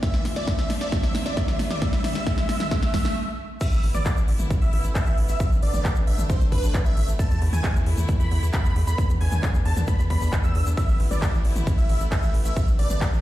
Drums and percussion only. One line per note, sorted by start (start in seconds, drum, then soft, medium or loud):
0.03 kick loud
0.03 snare medium
0.03 closed hi-hat medium
0.14 snare medium
0.25 snare medium
0.25 open hi-hat loud
0.36 snare medium
0.36 closed hi-hat medium
0.47 kick loud
0.47 snare loud
0.47 closed hi-hat medium
0.59 snare medium
0.70 snare loud
0.70 open hi-hat loud
0.81 snare medium
0.81 closed hi-hat medium
0.92 kick loud
0.92 snare loud
0.92 closed hi-hat medium
1.03 snare medium
1.03 closed hi-hat soft
1.15 snare loud
1.15 open hi-hat loud
1.26 snare medium
1.26 closed hi-hat medium
1.37 kick loud
1.37 snare loud
1.37 closed hi-hat medium
1.48 snare medium
1.48 mid tom medium
1.59 snare loud
1.59 open hi-hat loud
1.71 snare medium
1.71 closed hi-hat medium
1.71 mid tom medium
1.82 kick loud
1.82 snare loud
1.82 closed hi-hat medium
1.93 snare medium
1.93 closed hi-hat soft
2.04 snare loud
2.04 open hi-hat medium
2.04 mid tom medium
2.15 snare medium
2.15 closed hi-hat medium
2.27 kick loud
2.27 snare loud
2.27 closed hi-hat medium
2.38 snare medium
2.38 closed hi-hat soft
2.49 snare loud
2.49 open hi-hat loud
2.60 snare loud
2.60 closed hi-hat medium
2.60 mid tom medium
2.71 kick loud
2.71 snare loud
2.71 closed hi-hat medium
2.83 snare medium
2.83 closed hi-hat soft
2.94 kick medium
2.94 snare loud
2.94 open hi-hat loud
2.94 mid tom medium
3.05 snare loud
3.61 kick loud
3.61 closed hi-hat medium
3.61 crash loud
3.61 shaker medium
3.72 shaker soft
3.83 open hi-hat loud
3.94 closed hi-hat medium
3.94 mid tom medium
3.94 shaker medium
4.06 kick loud
4.06 clap loud
4.06 closed hi-hat medium
4.06 shaker medium
4.17 shaker soft
4.28 open hi-hat loud
4.39 closed hi-hat medium
4.39 mid tom medium
4.39 shaker medium
4.50 kick loud
4.50 closed hi-hat medium
4.50 shaker medium
4.62 closed hi-hat soft
4.62 shaker soft
4.73 open hi-hat loud
4.84 closed hi-hat medium
4.84 shaker medium
4.95 kick loud
4.95 clap loud
4.95 closed hi-hat medium
4.95 shaker medium
5.06 shaker soft
5.18 open hi-hat loud
5.29 closed hi-hat medium
5.29 shaker medium
5.40 kick loud
5.40 closed hi-hat medium
5.40 shaker medium
5.52 shaker soft
5.62 open hi-hat loud
5.74 closed hi-hat medium
5.74 mid tom medium
5.74 shaker medium
5.85 kick loud
5.85 clap loud
5.85 closed hi-hat medium
5.85 shaker medium
5.95 shaker soft
6.07 open hi-hat loud
6.18 closed hi-hat medium
6.18 mid tom medium
6.18 shaker medium
6.30 kick loud
6.30 closed hi-hat medium
6.30 shaker medium
6.41 closed hi-hat soft
6.41 mid tom medium
6.41 shaker soft
6.52 kick medium
6.52 open hi-hat loud
6.63 open hi-hat medium
6.63 shaker medium
6.74 kick loud
6.74 clap loud
6.74 closed hi-hat medium
6.74 shaker medium
6.85 shaker soft
6.97 open hi-hat loud
7.08 closed hi-hat medium
7.08 shaker medium
7.19 kick loud
7.19 closed hi-hat medium
7.19 shaker medium
7.31 shaker soft
7.42 open hi-hat loud
7.53 closed hi-hat medium
7.53 mid tom medium
7.53 shaker medium
7.64 kick loud
7.64 clap loud
7.64 closed hi-hat medium
7.64 shaker medium
7.76 shaker soft
7.86 open hi-hat loud
7.98 closed hi-hat medium
7.98 mid tom medium
7.98 shaker medium
8.08 kick loud
8.08 closed hi-hat medium
8.08 shaker medium
8.20 closed hi-hat soft
8.20 shaker soft
8.31 open hi-hat loud
8.42 closed hi-hat medium
8.42 shaker medium
8.53 kick loud
8.53 clap loud
8.53 closed hi-hat medium
8.53 shaker medium
8.65 shaker soft
8.76 open hi-hat loud
8.87 closed hi-hat medium
8.87 shaker medium
8.98 kick loud
8.98 closed hi-hat medium
8.98 shaker medium
9.10 closed hi-hat soft
9.10 shaker soft
9.21 open hi-hat loud
9.31 closed hi-hat soft
9.31 mid tom medium
9.31 shaker medium
9.43 kick loud
9.43 clap loud
9.43 closed hi-hat medium
9.43 shaker medium
9.54 shaker soft
9.65 open hi-hat loud
9.77 closed hi-hat medium
9.77 mid tom medium
9.77 shaker medium
9.87 kick loud
9.87 closed hi-hat medium
9.87 shaker medium
9.99 closed hi-hat soft
9.99 mid tom medium
9.99 shaker soft
10.10 kick medium
10.10 open hi-hat loud
10.21 open hi-hat medium
10.21 shaker medium
10.32 kick loud
10.32 clap loud
10.32 closed hi-hat medium
10.32 shaker medium
10.43 shaker soft
10.55 open hi-hat loud
10.66 closed hi-hat medium
10.66 shaker medium
10.77 kick loud
10.77 closed hi-hat medium
10.77 ride medium
10.77 shaker medium
10.89 shaker soft
11.00 open hi-hat loud
11.11 closed hi-hat medium
11.11 mid tom medium
11.11 shaker medium
11.22 kick loud
11.22 clap loud
11.22 closed hi-hat medium
11.22 ride medium
11.22 shaker medium
11.34 shaker soft
11.45 open hi-hat loud
11.56 closed hi-hat medium
11.56 mid tom medium
11.56 shaker medium
11.67 kick loud
11.67 closed hi-hat medium
11.67 ride medium
11.67 shaker medium
11.78 closed hi-hat soft
11.78 shaker soft
11.89 open hi-hat loud
12.00 closed hi-hat medium
12.00 shaker medium
12.12 kick loud
12.12 clap loud
12.12 closed hi-hat medium
12.12 ride medium
12.12 shaker medium
12.23 shaker soft
12.34 open hi-hat loud
12.45 closed hi-hat medium
12.45 shaker medium
12.56 kick loud
12.56 closed hi-hat medium
12.56 ride medium
12.56 shaker medium
12.68 shaker soft
12.79 open hi-hat loud
12.90 closed hi-hat medium
12.90 mid tom medium
12.90 shaker medium
13.01 kick loud
13.01 clap loud
13.01 closed hi-hat medium
13.01 ride medium
13.01 shaker medium
13.13 shaker soft